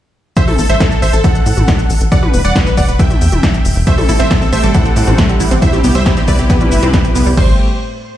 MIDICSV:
0, 0, Header, 1, 6, 480
1, 0, Start_track
1, 0, Tempo, 437956
1, 401, Time_signature, 4, 2, 24, 8
1, 8958, End_track
2, 0, Start_track
2, 0, Title_t, "Supersaw synth"
2, 0, Program_c, 0, 81
2, 402, Note_on_c, 0, 72, 78
2, 402, Note_on_c, 0, 76, 98
2, 488, Note_off_c, 0, 72, 0
2, 488, Note_off_c, 0, 76, 0
2, 522, Note_on_c, 0, 69, 65
2, 608, Note_off_c, 0, 69, 0
2, 643, Note_on_c, 0, 69, 64
2, 729, Note_off_c, 0, 69, 0
2, 762, Note_on_c, 0, 72, 77
2, 762, Note_on_c, 0, 76, 94
2, 849, Note_off_c, 0, 72, 0
2, 849, Note_off_c, 0, 76, 0
2, 882, Note_on_c, 0, 69, 62
2, 968, Note_off_c, 0, 69, 0
2, 1002, Note_on_c, 0, 69, 65
2, 1089, Note_off_c, 0, 69, 0
2, 1120, Note_on_c, 0, 72, 77
2, 1120, Note_on_c, 0, 76, 89
2, 1208, Note_off_c, 0, 72, 0
2, 1208, Note_off_c, 0, 76, 0
2, 1240, Note_on_c, 0, 69, 61
2, 1328, Note_off_c, 0, 69, 0
2, 1360, Note_on_c, 0, 69, 80
2, 1360, Note_on_c, 0, 78, 102
2, 2225, Note_off_c, 0, 69, 0
2, 2225, Note_off_c, 0, 78, 0
2, 2320, Note_on_c, 0, 74, 75
2, 2320, Note_on_c, 0, 78, 97
2, 2407, Note_off_c, 0, 78, 0
2, 2408, Note_off_c, 0, 74, 0
2, 2441, Note_on_c, 0, 71, 66
2, 2528, Note_off_c, 0, 71, 0
2, 2561, Note_on_c, 0, 71, 65
2, 2648, Note_off_c, 0, 71, 0
2, 2681, Note_on_c, 0, 74, 79
2, 2681, Note_on_c, 0, 78, 95
2, 2768, Note_off_c, 0, 74, 0
2, 2768, Note_off_c, 0, 78, 0
2, 2801, Note_on_c, 0, 71, 64
2, 2888, Note_off_c, 0, 71, 0
2, 2921, Note_on_c, 0, 71, 65
2, 3008, Note_off_c, 0, 71, 0
2, 3040, Note_on_c, 0, 78, 90
2, 3041, Note_on_c, 0, 74, 78
2, 3128, Note_off_c, 0, 74, 0
2, 3128, Note_off_c, 0, 78, 0
2, 3161, Note_on_c, 0, 71, 62
2, 3248, Note_off_c, 0, 71, 0
2, 3281, Note_on_c, 0, 76, 81
2, 3282, Note_on_c, 0, 79, 99
2, 4145, Note_off_c, 0, 76, 0
2, 4145, Note_off_c, 0, 79, 0
2, 4240, Note_on_c, 0, 72, 77
2, 4240, Note_on_c, 0, 76, 100
2, 4327, Note_off_c, 0, 72, 0
2, 4327, Note_off_c, 0, 76, 0
2, 4360, Note_on_c, 0, 69, 65
2, 4447, Note_off_c, 0, 69, 0
2, 4480, Note_on_c, 0, 69, 65
2, 4567, Note_off_c, 0, 69, 0
2, 4598, Note_on_c, 0, 72, 78
2, 4598, Note_on_c, 0, 76, 96
2, 4686, Note_off_c, 0, 72, 0
2, 4686, Note_off_c, 0, 76, 0
2, 4719, Note_on_c, 0, 69, 67
2, 4807, Note_off_c, 0, 69, 0
2, 4838, Note_on_c, 0, 69, 64
2, 4926, Note_off_c, 0, 69, 0
2, 4960, Note_on_c, 0, 72, 78
2, 4960, Note_on_c, 0, 76, 88
2, 5047, Note_off_c, 0, 72, 0
2, 5047, Note_off_c, 0, 76, 0
2, 5079, Note_on_c, 0, 69, 63
2, 5167, Note_off_c, 0, 69, 0
2, 5200, Note_on_c, 0, 78, 101
2, 5201, Note_on_c, 0, 69, 82
2, 6065, Note_off_c, 0, 69, 0
2, 6065, Note_off_c, 0, 78, 0
2, 6160, Note_on_c, 0, 72, 79
2, 6161, Note_on_c, 0, 76, 98
2, 6247, Note_off_c, 0, 72, 0
2, 6248, Note_off_c, 0, 76, 0
2, 6281, Note_on_c, 0, 67, 65
2, 6368, Note_off_c, 0, 67, 0
2, 6402, Note_on_c, 0, 67, 65
2, 6488, Note_off_c, 0, 67, 0
2, 6522, Note_on_c, 0, 72, 77
2, 6522, Note_on_c, 0, 76, 97
2, 6608, Note_off_c, 0, 72, 0
2, 6609, Note_off_c, 0, 76, 0
2, 6642, Note_on_c, 0, 67, 63
2, 6728, Note_off_c, 0, 67, 0
2, 6763, Note_on_c, 0, 67, 68
2, 6849, Note_off_c, 0, 67, 0
2, 6883, Note_on_c, 0, 71, 79
2, 6884, Note_on_c, 0, 74, 91
2, 6969, Note_off_c, 0, 71, 0
2, 6969, Note_off_c, 0, 74, 0
2, 7004, Note_on_c, 0, 67, 63
2, 7089, Note_off_c, 0, 67, 0
2, 7123, Note_on_c, 0, 67, 83
2, 7124, Note_on_c, 0, 71, 102
2, 7986, Note_off_c, 0, 67, 0
2, 7987, Note_off_c, 0, 71, 0
2, 8083, Note_on_c, 0, 72, 93
2, 8261, Note_off_c, 0, 72, 0
2, 8958, End_track
3, 0, Start_track
3, 0, Title_t, "Synth arpeggio sound"
3, 0, Program_c, 1, 84
3, 4241, Note_on_c, 1, 57, 105
3, 4325, Note_off_c, 1, 57, 0
3, 4361, Note_on_c, 1, 55, 76
3, 4395, Note_off_c, 1, 55, 0
3, 4481, Note_on_c, 1, 64, 98
3, 4537, Note_off_c, 1, 64, 0
3, 4601, Note_on_c, 1, 60, 103
3, 4657, Note_off_c, 1, 60, 0
3, 4721, Note_on_c, 1, 64, 83
3, 4754, Note_off_c, 1, 64, 0
3, 4841, Note_on_c, 1, 60, 76
3, 4875, Note_off_c, 1, 60, 0
3, 4960, Note_on_c, 1, 57, 100
3, 5044, Note_off_c, 1, 57, 0
3, 5081, Note_on_c, 1, 55, 76
3, 5114, Note_off_c, 1, 55, 0
3, 5200, Note_on_c, 1, 64, 100
3, 5257, Note_off_c, 1, 64, 0
3, 5321, Note_on_c, 1, 60, 99
3, 5377, Note_off_c, 1, 60, 0
3, 5441, Note_on_c, 1, 64, 79
3, 5475, Note_off_c, 1, 64, 0
3, 5560, Note_on_c, 1, 60, 77
3, 5594, Note_off_c, 1, 60, 0
3, 5681, Note_on_c, 1, 57, 102
3, 5765, Note_off_c, 1, 57, 0
3, 5801, Note_on_c, 1, 55, 78
3, 5835, Note_off_c, 1, 55, 0
3, 5921, Note_on_c, 1, 64, 104
3, 5977, Note_off_c, 1, 64, 0
3, 6041, Note_on_c, 1, 60, 101
3, 6097, Note_off_c, 1, 60, 0
3, 6161, Note_on_c, 1, 64, 86
3, 6194, Note_off_c, 1, 64, 0
3, 6281, Note_on_c, 1, 60, 74
3, 6315, Note_off_c, 1, 60, 0
3, 6401, Note_on_c, 1, 59, 101
3, 6485, Note_off_c, 1, 59, 0
3, 6521, Note_on_c, 1, 55, 77
3, 6555, Note_off_c, 1, 55, 0
3, 6641, Note_on_c, 1, 64, 104
3, 6697, Note_off_c, 1, 64, 0
3, 6761, Note_on_c, 1, 60, 105
3, 6817, Note_off_c, 1, 60, 0
3, 6881, Note_on_c, 1, 64, 73
3, 6915, Note_off_c, 1, 64, 0
3, 7001, Note_on_c, 1, 60, 80
3, 7035, Note_off_c, 1, 60, 0
3, 7121, Note_on_c, 1, 59, 103
3, 7205, Note_off_c, 1, 59, 0
3, 7241, Note_on_c, 1, 55, 78
3, 7275, Note_off_c, 1, 55, 0
3, 7361, Note_on_c, 1, 64, 104
3, 7417, Note_off_c, 1, 64, 0
3, 7481, Note_on_c, 1, 60, 101
3, 7537, Note_off_c, 1, 60, 0
3, 7601, Note_on_c, 1, 64, 85
3, 7635, Note_off_c, 1, 64, 0
3, 7722, Note_on_c, 1, 60, 74
3, 7755, Note_off_c, 1, 60, 0
3, 7841, Note_on_c, 1, 59, 102
3, 7925, Note_off_c, 1, 59, 0
3, 7961, Note_on_c, 1, 55, 77
3, 7995, Note_off_c, 1, 55, 0
3, 8081, Note_on_c, 1, 55, 96
3, 8304, Note_off_c, 1, 55, 0
3, 8958, End_track
4, 0, Start_track
4, 0, Title_t, "String section"
4, 0, Program_c, 2, 48
4, 4240, Note_on_c, 2, 55, 83
4, 4241, Note_on_c, 2, 57, 74
4, 4241, Note_on_c, 2, 60, 94
4, 6142, Note_off_c, 2, 57, 0
4, 6142, Note_off_c, 2, 60, 0
4, 6162, Note_on_c, 2, 48, 82
4, 6162, Note_on_c, 2, 59, 74
4, 6162, Note_on_c, 2, 64, 92
4, 8042, Note_off_c, 2, 55, 0
4, 8062, Note_off_c, 2, 48, 0
4, 8062, Note_off_c, 2, 59, 0
4, 8062, Note_off_c, 2, 64, 0
4, 8081, Note_on_c, 2, 57, 69
4, 8081, Note_on_c, 2, 60, 65
4, 8081, Note_on_c, 2, 67, 81
4, 8082, Note_on_c, 2, 45, 73
4, 8305, Note_off_c, 2, 45, 0
4, 8305, Note_off_c, 2, 57, 0
4, 8305, Note_off_c, 2, 60, 0
4, 8305, Note_off_c, 2, 67, 0
4, 8958, End_track
5, 0, Start_track
5, 0, Title_t, "Analog synth bass"
5, 0, Program_c, 3, 38
5, 642, Note_on_c, 3, 33, 96
5, 720, Note_off_c, 3, 33, 0
5, 762, Note_on_c, 3, 33, 79
5, 840, Note_off_c, 3, 33, 0
5, 1122, Note_on_c, 3, 33, 92
5, 1200, Note_off_c, 3, 33, 0
5, 1242, Note_on_c, 3, 33, 82
5, 1320, Note_off_c, 3, 33, 0
5, 1602, Note_on_c, 3, 45, 97
5, 1680, Note_off_c, 3, 45, 0
5, 1722, Note_on_c, 3, 33, 84
5, 1800, Note_off_c, 3, 33, 0
5, 2082, Note_on_c, 3, 33, 93
5, 2160, Note_off_c, 3, 33, 0
5, 2201, Note_on_c, 3, 33, 81
5, 2280, Note_off_c, 3, 33, 0
5, 2562, Note_on_c, 3, 28, 97
5, 2640, Note_off_c, 3, 28, 0
5, 2682, Note_on_c, 3, 28, 82
5, 2760, Note_off_c, 3, 28, 0
5, 3042, Note_on_c, 3, 28, 91
5, 3120, Note_off_c, 3, 28, 0
5, 3162, Note_on_c, 3, 28, 84
5, 3240, Note_off_c, 3, 28, 0
5, 3522, Note_on_c, 3, 40, 97
5, 3600, Note_off_c, 3, 40, 0
5, 3641, Note_on_c, 3, 28, 80
5, 3720, Note_off_c, 3, 28, 0
5, 4002, Note_on_c, 3, 28, 94
5, 4080, Note_off_c, 3, 28, 0
5, 4122, Note_on_c, 3, 28, 84
5, 4200, Note_off_c, 3, 28, 0
5, 4482, Note_on_c, 3, 33, 97
5, 4560, Note_off_c, 3, 33, 0
5, 4602, Note_on_c, 3, 33, 80
5, 4680, Note_off_c, 3, 33, 0
5, 4962, Note_on_c, 3, 33, 91
5, 5040, Note_off_c, 3, 33, 0
5, 5082, Note_on_c, 3, 33, 86
5, 5160, Note_off_c, 3, 33, 0
5, 5442, Note_on_c, 3, 45, 97
5, 5520, Note_off_c, 3, 45, 0
5, 5563, Note_on_c, 3, 33, 84
5, 5640, Note_off_c, 3, 33, 0
5, 5922, Note_on_c, 3, 33, 95
5, 6000, Note_off_c, 3, 33, 0
5, 6042, Note_on_c, 3, 33, 85
5, 6120, Note_off_c, 3, 33, 0
5, 6401, Note_on_c, 3, 36, 99
5, 6480, Note_off_c, 3, 36, 0
5, 6522, Note_on_c, 3, 36, 81
5, 6600, Note_off_c, 3, 36, 0
5, 6881, Note_on_c, 3, 36, 93
5, 6960, Note_off_c, 3, 36, 0
5, 7002, Note_on_c, 3, 36, 84
5, 7080, Note_off_c, 3, 36, 0
5, 7362, Note_on_c, 3, 31, 97
5, 7440, Note_off_c, 3, 31, 0
5, 7482, Note_on_c, 3, 36, 83
5, 7560, Note_off_c, 3, 36, 0
5, 7842, Note_on_c, 3, 36, 95
5, 7920, Note_off_c, 3, 36, 0
5, 7962, Note_on_c, 3, 36, 83
5, 8040, Note_off_c, 3, 36, 0
5, 8082, Note_on_c, 3, 33, 94
5, 8305, Note_off_c, 3, 33, 0
5, 8958, End_track
6, 0, Start_track
6, 0, Title_t, "Drums"
6, 401, Note_on_c, 9, 36, 119
6, 402, Note_on_c, 9, 42, 81
6, 402, Note_on_c, 9, 82, 39
6, 511, Note_off_c, 9, 36, 0
6, 511, Note_off_c, 9, 42, 0
6, 511, Note_off_c, 9, 82, 0
6, 522, Note_on_c, 9, 46, 61
6, 522, Note_on_c, 9, 47, 74
6, 631, Note_off_c, 9, 46, 0
6, 631, Note_off_c, 9, 47, 0
6, 641, Note_on_c, 9, 46, 105
6, 641, Note_on_c, 9, 82, 70
6, 751, Note_off_c, 9, 46, 0
6, 751, Note_off_c, 9, 82, 0
6, 762, Note_on_c, 9, 42, 53
6, 762, Note_on_c, 9, 82, 29
6, 872, Note_off_c, 9, 42, 0
6, 872, Note_off_c, 9, 82, 0
6, 882, Note_on_c, 9, 36, 118
6, 882, Note_on_c, 9, 38, 123
6, 882, Note_on_c, 9, 42, 82
6, 882, Note_on_c, 9, 82, 40
6, 991, Note_off_c, 9, 36, 0
6, 991, Note_off_c, 9, 38, 0
6, 991, Note_off_c, 9, 42, 0
6, 991, Note_off_c, 9, 82, 0
6, 1002, Note_on_c, 9, 82, 29
6, 1112, Note_off_c, 9, 82, 0
6, 1122, Note_on_c, 9, 46, 105
6, 1122, Note_on_c, 9, 82, 69
6, 1232, Note_off_c, 9, 46, 0
6, 1232, Note_off_c, 9, 82, 0
6, 1242, Note_on_c, 9, 42, 56
6, 1242, Note_on_c, 9, 82, 31
6, 1352, Note_off_c, 9, 42, 0
6, 1352, Note_off_c, 9, 82, 0
6, 1362, Note_on_c, 9, 36, 121
6, 1362, Note_on_c, 9, 42, 82
6, 1362, Note_on_c, 9, 82, 40
6, 1471, Note_off_c, 9, 36, 0
6, 1471, Note_off_c, 9, 42, 0
6, 1471, Note_off_c, 9, 82, 0
6, 1482, Note_on_c, 9, 42, 38
6, 1482, Note_on_c, 9, 82, 29
6, 1591, Note_off_c, 9, 42, 0
6, 1591, Note_off_c, 9, 82, 0
6, 1602, Note_on_c, 9, 46, 105
6, 1602, Note_on_c, 9, 82, 70
6, 1711, Note_off_c, 9, 46, 0
6, 1711, Note_off_c, 9, 82, 0
6, 1722, Note_on_c, 9, 42, 53
6, 1722, Note_on_c, 9, 47, 59
6, 1722, Note_on_c, 9, 82, 29
6, 1832, Note_off_c, 9, 42, 0
6, 1832, Note_off_c, 9, 47, 0
6, 1832, Note_off_c, 9, 82, 0
6, 1842, Note_on_c, 9, 36, 120
6, 1842, Note_on_c, 9, 38, 125
6, 1842, Note_on_c, 9, 42, 84
6, 1842, Note_on_c, 9, 82, 41
6, 1951, Note_off_c, 9, 36, 0
6, 1952, Note_off_c, 9, 38, 0
6, 1952, Note_off_c, 9, 42, 0
6, 1952, Note_off_c, 9, 82, 0
6, 1962, Note_on_c, 9, 42, 39
6, 1962, Note_on_c, 9, 82, 28
6, 2071, Note_off_c, 9, 42, 0
6, 2071, Note_off_c, 9, 82, 0
6, 2082, Note_on_c, 9, 46, 107
6, 2082, Note_on_c, 9, 82, 70
6, 2191, Note_off_c, 9, 46, 0
6, 2191, Note_off_c, 9, 82, 0
6, 2202, Note_on_c, 9, 42, 55
6, 2202, Note_on_c, 9, 82, 30
6, 2311, Note_off_c, 9, 42, 0
6, 2311, Note_off_c, 9, 82, 0
6, 2321, Note_on_c, 9, 36, 121
6, 2322, Note_on_c, 9, 42, 78
6, 2322, Note_on_c, 9, 82, 40
6, 2431, Note_off_c, 9, 36, 0
6, 2431, Note_off_c, 9, 42, 0
6, 2431, Note_off_c, 9, 82, 0
6, 2442, Note_on_c, 9, 47, 76
6, 2551, Note_off_c, 9, 47, 0
6, 2562, Note_on_c, 9, 46, 112
6, 2562, Note_on_c, 9, 82, 69
6, 2671, Note_off_c, 9, 46, 0
6, 2671, Note_off_c, 9, 82, 0
6, 2682, Note_on_c, 9, 42, 52
6, 2682, Note_on_c, 9, 82, 30
6, 2791, Note_off_c, 9, 42, 0
6, 2791, Note_off_c, 9, 82, 0
6, 2801, Note_on_c, 9, 36, 127
6, 2802, Note_on_c, 9, 38, 126
6, 2802, Note_on_c, 9, 42, 81
6, 2802, Note_on_c, 9, 82, 41
6, 2911, Note_off_c, 9, 36, 0
6, 2912, Note_off_c, 9, 38, 0
6, 2912, Note_off_c, 9, 42, 0
6, 2912, Note_off_c, 9, 82, 0
6, 2922, Note_on_c, 9, 38, 38
6, 2922, Note_on_c, 9, 82, 29
6, 3032, Note_off_c, 9, 38, 0
6, 3032, Note_off_c, 9, 82, 0
6, 3041, Note_on_c, 9, 36, 63
6, 3043, Note_on_c, 9, 46, 109
6, 3043, Note_on_c, 9, 82, 70
6, 3151, Note_off_c, 9, 36, 0
6, 3152, Note_off_c, 9, 46, 0
6, 3152, Note_off_c, 9, 82, 0
6, 3162, Note_on_c, 9, 42, 53
6, 3162, Note_on_c, 9, 82, 30
6, 3272, Note_off_c, 9, 42, 0
6, 3272, Note_off_c, 9, 82, 0
6, 3281, Note_on_c, 9, 36, 125
6, 3283, Note_on_c, 9, 42, 80
6, 3283, Note_on_c, 9, 82, 39
6, 3391, Note_off_c, 9, 36, 0
6, 3392, Note_off_c, 9, 42, 0
6, 3392, Note_off_c, 9, 82, 0
6, 3403, Note_on_c, 9, 42, 38
6, 3403, Note_on_c, 9, 47, 61
6, 3403, Note_on_c, 9, 82, 27
6, 3512, Note_off_c, 9, 42, 0
6, 3512, Note_off_c, 9, 47, 0
6, 3512, Note_off_c, 9, 82, 0
6, 3522, Note_on_c, 9, 46, 109
6, 3522, Note_on_c, 9, 82, 70
6, 3632, Note_off_c, 9, 46, 0
6, 3632, Note_off_c, 9, 82, 0
6, 3642, Note_on_c, 9, 42, 53
6, 3642, Note_on_c, 9, 47, 60
6, 3642, Note_on_c, 9, 82, 30
6, 3752, Note_off_c, 9, 42, 0
6, 3752, Note_off_c, 9, 47, 0
6, 3752, Note_off_c, 9, 82, 0
6, 3761, Note_on_c, 9, 36, 120
6, 3762, Note_on_c, 9, 38, 127
6, 3762, Note_on_c, 9, 42, 80
6, 3762, Note_on_c, 9, 82, 41
6, 3871, Note_off_c, 9, 36, 0
6, 3872, Note_off_c, 9, 38, 0
6, 3872, Note_off_c, 9, 42, 0
6, 3872, Note_off_c, 9, 82, 0
6, 3882, Note_on_c, 9, 42, 37
6, 3882, Note_on_c, 9, 82, 28
6, 3992, Note_off_c, 9, 42, 0
6, 3992, Note_off_c, 9, 82, 0
6, 4002, Note_on_c, 9, 46, 111
6, 4002, Note_on_c, 9, 82, 70
6, 4111, Note_off_c, 9, 46, 0
6, 4111, Note_off_c, 9, 82, 0
6, 4121, Note_on_c, 9, 46, 66
6, 4121, Note_on_c, 9, 82, 31
6, 4231, Note_off_c, 9, 46, 0
6, 4231, Note_off_c, 9, 82, 0
6, 4241, Note_on_c, 9, 36, 125
6, 4241, Note_on_c, 9, 42, 78
6, 4241, Note_on_c, 9, 82, 39
6, 4351, Note_off_c, 9, 36, 0
6, 4351, Note_off_c, 9, 42, 0
6, 4351, Note_off_c, 9, 82, 0
6, 4361, Note_on_c, 9, 46, 64
6, 4361, Note_on_c, 9, 47, 81
6, 4470, Note_off_c, 9, 46, 0
6, 4470, Note_off_c, 9, 47, 0
6, 4481, Note_on_c, 9, 46, 112
6, 4481, Note_on_c, 9, 82, 74
6, 4591, Note_off_c, 9, 46, 0
6, 4591, Note_off_c, 9, 82, 0
6, 4601, Note_on_c, 9, 42, 52
6, 4601, Note_on_c, 9, 82, 32
6, 4711, Note_off_c, 9, 42, 0
6, 4711, Note_off_c, 9, 82, 0
6, 4721, Note_on_c, 9, 36, 125
6, 4721, Note_on_c, 9, 38, 121
6, 4721, Note_on_c, 9, 42, 77
6, 4721, Note_on_c, 9, 82, 41
6, 4831, Note_off_c, 9, 36, 0
6, 4831, Note_off_c, 9, 38, 0
6, 4831, Note_off_c, 9, 42, 0
6, 4831, Note_off_c, 9, 82, 0
6, 4841, Note_on_c, 9, 82, 29
6, 4950, Note_off_c, 9, 82, 0
6, 4961, Note_on_c, 9, 46, 113
6, 4961, Note_on_c, 9, 82, 74
6, 5071, Note_off_c, 9, 46, 0
6, 5071, Note_off_c, 9, 82, 0
6, 5080, Note_on_c, 9, 42, 53
6, 5080, Note_on_c, 9, 82, 31
6, 5190, Note_off_c, 9, 42, 0
6, 5190, Note_off_c, 9, 82, 0
6, 5200, Note_on_c, 9, 42, 77
6, 5200, Note_on_c, 9, 82, 42
6, 5201, Note_on_c, 9, 36, 127
6, 5310, Note_off_c, 9, 42, 0
6, 5310, Note_off_c, 9, 82, 0
6, 5311, Note_off_c, 9, 36, 0
6, 5321, Note_on_c, 9, 42, 36
6, 5321, Note_on_c, 9, 82, 29
6, 5430, Note_off_c, 9, 42, 0
6, 5430, Note_off_c, 9, 82, 0
6, 5440, Note_on_c, 9, 46, 110
6, 5440, Note_on_c, 9, 82, 72
6, 5550, Note_off_c, 9, 46, 0
6, 5550, Note_off_c, 9, 82, 0
6, 5561, Note_on_c, 9, 42, 49
6, 5561, Note_on_c, 9, 47, 64
6, 5561, Note_on_c, 9, 82, 31
6, 5670, Note_off_c, 9, 42, 0
6, 5670, Note_off_c, 9, 47, 0
6, 5670, Note_off_c, 9, 82, 0
6, 5681, Note_on_c, 9, 36, 126
6, 5681, Note_on_c, 9, 38, 124
6, 5681, Note_on_c, 9, 42, 78
6, 5681, Note_on_c, 9, 82, 41
6, 5790, Note_off_c, 9, 38, 0
6, 5790, Note_off_c, 9, 42, 0
6, 5790, Note_off_c, 9, 82, 0
6, 5791, Note_off_c, 9, 36, 0
6, 5801, Note_on_c, 9, 42, 38
6, 5801, Note_on_c, 9, 82, 29
6, 5911, Note_off_c, 9, 42, 0
6, 5911, Note_off_c, 9, 82, 0
6, 5921, Note_on_c, 9, 46, 112
6, 5921, Note_on_c, 9, 82, 75
6, 6030, Note_off_c, 9, 46, 0
6, 6030, Note_off_c, 9, 82, 0
6, 6041, Note_on_c, 9, 42, 52
6, 6041, Note_on_c, 9, 82, 31
6, 6151, Note_off_c, 9, 42, 0
6, 6151, Note_off_c, 9, 82, 0
6, 6161, Note_on_c, 9, 36, 118
6, 6161, Note_on_c, 9, 42, 76
6, 6161, Note_on_c, 9, 82, 44
6, 6271, Note_off_c, 9, 36, 0
6, 6271, Note_off_c, 9, 42, 0
6, 6271, Note_off_c, 9, 82, 0
6, 6281, Note_on_c, 9, 42, 35
6, 6281, Note_on_c, 9, 47, 84
6, 6281, Note_on_c, 9, 82, 31
6, 6391, Note_off_c, 9, 42, 0
6, 6391, Note_off_c, 9, 47, 0
6, 6391, Note_off_c, 9, 82, 0
6, 6401, Note_on_c, 9, 46, 115
6, 6401, Note_on_c, 9, 82, 79
6, 6510, Note_off_c, 9, 46, 0
6, 6510, Note_off_c, 9, 82, 0
6, 6521, Note_on_c, 9, 42, 50
6, 6521, Note_on_c, 9, 82, 32
6, 6631, Note_off_c, 9, 42, 0
6, 6631, Note_off_c, 9, 82, 0
6, 6641, Note_on_c, 9, 36, 127
6, 6641, Note_on_c, 9, 38, 119
6, 6641, Note_on_c, 9, 42, 74
6, 6641, Note_on_c, 9, 82, 43
6, 6751, Note_off_c, 9, 36, 0
6, 6751, Note_off_c, 9, 38, 0
6, 6751, Note_off_c, 9, 42, 0
6, 6751, Note_off_c, 9, 82, 0
6, 6761, Note_on_c, 9, 38, 37
6, 6761, Note_on_c, 9, 42, 36
6, 6761, Note_on_c, 9, 82, 31
6, 6871, Note_off_c, 9, 38, 0
6, 6871, Note_off_c, 9, 42, 0
6, 6871, Note_off_c, 9, 82, 0
6, 6881, Note_on_c, 9, 36, 66
6, 6881, Note_on_c, 9, 46, 111
6, 6881, Note_on_c, 9, 82, 76
6, 6991, Note_off_c, 9, 36, 0
6, 6991, Note_off_c, 9, 46, 0
6, 6991, Note_off_c, 9, 82, 0
6, 7002, Note_on_c, 9, 42, 52
6, 7002, Note_on_c, 9, 82, 32
6, 7111, Note_off_c, 9, 42, 0
6, 7111, Note_off_c, 9, 82, 0
6, 7122, Note_on_c, 9, 36, 127
6, 7122, Note_on_c, 9, 42, 76
6, 7122, Note_on_c, 9, 82, 42
6, 7231, Note_off_c, 9, 36, 0
6, 7231, Note_off_c, 9, 42, 0
6, 7231, Note_off_c, 9, 82, 0
6, 7242, Note_on_c, 9, 42, 35
6, 7242, Note_on_c, 9, 47, 65
6, 7242, Note_on_c, 9, 82, 30
6, 7352, Note_off_c, 9, 42, 0
6, 7352, Note_off_c, 9, 47, 0
6, 7352, Note_off_c, 9, 82, 0
6, 7362, Note_on_c, 9, 46, 107
6, 7362, Note_on_c, 9, 82, 75
6, 7471, Note_off_c, 9, 46, 0
6, 7471, Note_off_c, 9, 82, 0
6, 7481, Note_on_c, 9, 42, 51
6, 7481, Note_on_c, 9, 47, 63
6, 7481, Note_on_c, 9, 82, 31
6, 7591, Note_off_c, 9, 42, 0
6, 7591, Note_off_c, 9, 47, 0
6, 7591, Note_off_c, 9, 82, 0
6, 7602, Note_on_c, 9, 36, 124
6, 7602, Note_on_c, 9, 38, 115
6, 7602, Note_on_c, 9, 42, 79
6, 7602, Note_on_c, 9, 82, 43
6, 7711, Note_off_c, 9, 36, 0
6, 7711, Note_off_c, 9, 38, 0
6, 7711, Note_off_c, 9, 42, 0
6, 7711, Note_off_c, 9, 82, 0
6, 7722, Note_on_c, 9, 42, 35
6, 7722, Note_on_c, 9, 82, 30
6, 7831, Note_off_c, 9, 42, 0
6, 7831, Note_off_c, 9, 82, 0
6, 7842, Note_on_c, 9, 46, 112
6, 7842, Note_on_c, 9, 82, 76
6, 7951, Note_off_c, 9, 46, 0
6, 7951, Note_off_c, 9, 82, 0
6, 7962, Note_on_c, 9, 46, 66
6, 7962, Note_on_c, 9, 82, 33
6, 8071, Note_off_c, 9, 46, 0
6, 8071, Note_off_c, 9, 82, 0
6, 8082, Note_on_c, 9, 36, 104
6, 8082, Note_on_c, 9, 49, 87
6, 8191, Note_off_c, 9, 36, 0
6, 8191, Note_off_c, 9, 49, 0
6, 8958, End_track
0, 0, End_of_file